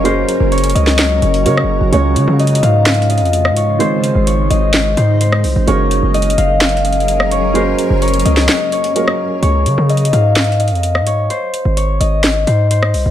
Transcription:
<<
  \new Staff \with { instrumentName = "Harp" } { \time 4/4 \key des \major \tempo 4 = 128 c''4 des''8 ees''4 des''8 des''4 | des''4 ees''8 f''4 ees''4 des''8 | c''4 des''8 ees''4 c''8 c''4 | des''4 ees''8 f''4 ees''4 des''8 |
c''4 des''8 ees''4 des''8 des''4 | des''4 ees''8 f''4 ees''4 des''8 | c''4 des''8 ees''4 c''8 c''4 | }
  \new Staff \with { instrumentName = "Ambient pad" } { \time 4/4 \key des \major << { <ges ges' bes'>1 | <des f'>1 | ees'1 | <ges aes' bes'>1~ |
<ges aes' bes'>1 | r1 | r1 | } \\ { des'1 | aes1~ | aes1 | des'1~ |
des'1 | r1 | r1 | } >> }
  \new Staff \with { instrumentName = "Felt piano" } { \time 4/4 \key des \major <ges bes des' aes' bes'>2. <ges bes des' aes' bes'>4 | <des aes des' f' des''>1 | <ees aes c' aes' c''>1 | <ges bes des' aes' bes'>1 |
<ges bes des' aes' bes'>2. <ges bes des' aes' bes'>4 | r1 | r1 | }
  \new Staff \with { instrumentName = "808-style bass" } { \clef bass \time 4/4 \key des \major ges,,8 r16 ges,,8. des,4 ges,,8 des16. ges,,16. ges,,16 | des,8 des16 des8. aes,4~ aes,16 f,8~ f,32 aes,8~ aes,32 | r8. aes,,8. aes,,4 aes,4 c,16 aes,,16 | ges,,8. ges,,8. ges,,2~ ges,,8~ |
ges,,8 r16 ges,,8. des,8 r2 | des,8 des16 des8. aes,4~ aes,16 f,8~ f,32 aes,8~ aes,32 | r8. aes,,8. aes,,4 aes,4 c,16 aes,,16 | }
  \new DrumStaff \with { instrumentName = "Drums" } \drummode { \time 4/4 hh8 hh8 hh32 hh32 hh32 hh32 hh16 sn16 <hc hh sn>8 hh16 hh16 hh16 ss8. | hh8 hh8 \tuplet 3/2 { hh16 hh16 hh16 hh16 r16 r16 <hc hh sn>16 hh16 hh16 hh16 hh16 hh16 } hh16 ss16 hh8 | hh8 hh8 hh8 hh8 <hc hh sn>8 hh8 hh16 ss16 hho8 | hh8 hh8 \tuplet 3/2 { hh16 hh16 hh16 hh16 r16 r16 <hc hh sn>16 hh16 hh16 hh16 hh16 hh16 } hh16 ss16 hh8 |
hh8 hh8 hh32 hh32 hh32 hh32 hh16 sn16 <hc hh sn>8 hh16 hh16 hh16 ss8. | hh8 hh8 \tuplet 3/2 { hh16 hh16 hh16 hh16 r16 r16 <hc hh sn>16 hh16 hh16 hh16 hh16 hh16 } hh16 ss16 hh8 | hh8 hh8 hh8 hh8 <hc hh sn>8 hh8 hh16 ss16 hho8 | }
>>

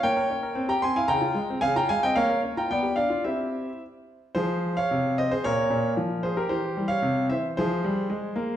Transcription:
<<
  \new Staff \with { instrumentName = "Grand piano" } { \time 2/4 \key f \minor \tempo 4 = 113 <des'' g''>4~ <des'' g''>16 <g'' bes''>16 <aes'' c'''>16 <f'' aes''>16 | <g'' bes''>4 <f'' aes''>16 <g'' bes''>16 <f'' aes''>16 <ees'' g''>16 | <des'' f''>8. <g'' bes''>16 <d'' g''>8 <d'' f''>8 | <c'' e''>4 r4 |
<aes' c''>8. <des'' f''>8. <c'' ees''>16 <aes' c''>16 | <bes' des''>4. <aes' c''>16 <g' bes'>16 | <g' c''>8. <des'' f''>8. <c'' e''>8 | <aes' c''>2 | }
  \new Staff \with { instrumentName = "Grand piano" } { \time 2/4 \key f \minor bes16 bes'16 des'16 bes'16 c'16 g'16 c'16 e'16 | des16 f'16 aes16 c'16 des16 f'16 aes16 c'16 | bes16 bes'16 des'16 f'16 b16 g'16 d'16 f'16 | <c' e' g'>4 r4 |
f4 c4 | bes,8 bes,8 f4 | e8 g8 c8 e8 | f8 g8 aes8 bes8 | }
>>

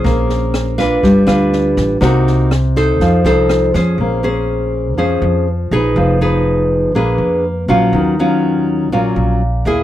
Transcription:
<<
  \new Staff \with { instrumentName = "Nylon-string guitar" } { \time 4/4 \key bes \minor \tempo 4 = 122 << { <des' aes' c''>4. <d' f' ces''>4 <d' f' b'>4. | <bes ees' ges'>4 r8 <ees' a' c''>4 <ees' a' c''>4 <des' aes' c''>8~ | <des' aes' c''>8 <des' aes' c''>4. <des' aes' c''>4 r8 <ees' aes' ces''>8~ | <ees' aes' ces''>8 <ees' aes' ces''>4. <d' aes' ces''>4 r8 <ges des' f'>8~ |
<ges des' f'>8 <ges des' f'>4. <ges des' f'>4 r8 <bes e' aes'>8 | } \\ { bes2 g2 | c2 f2 | bes2 f2 | f2 bes2 |
ees2 bes,2 | } >> }
  \new Staff \with { instrumentName = "Upright bass" } { \clef bass \time 4/4 \key bes \minor bes,,2 g,,8 d,4 a,,8 | c,2 f,8 c,4 f,8 | bes,,2 f,8 f,4 bes,,8 | f,,2 bes,,8 f,4 bes,,8 |
ees,2 bes,,8 bes,,4 ees,8 | }
  \new DrumStaff \with { instrumentName = "Drums" } \drummode { \time 4/4 <bd sn>8 sn8 <ss sn>8 <bd sn>8 <bd sn>8 <ss sn>8 sn8 <bd sn>8 | <bd ss sn>8 sn8 <ss sn>8 <bd sn>8 <bd sn>8 sn8 <ss sn>8 <bd sn>8 | r4 r4 r4 r4 | r4 r4 r4 r4 |
r4 r4 r4 r4 | }
>>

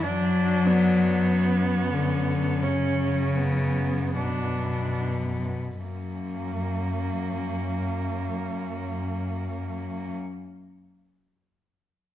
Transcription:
<<
  \new Staff \with { instrumentName = "Cello" } { \time 4/4 \key b \dorian \tempo 4 = 38 d'4 cis'2 b4 | cis'1 | }
  \new Staff \with { instrumentName = "Cello" } { \time 4/4 \key b \dorian d'8 b4. cis'8 b8 d'8 r8 | ais1 | }
  \new Staff \with { instrumentName = "Cello" } { \clef bass \time 4/4 \key b \dorian fis4. d8 cis4 b,4 | fis,1 | }
  \new Staff \with { instrumentName = "Cello" } { \clef bass \time 4/4 \key b \dorian fis,1 | fis,1 | }
>>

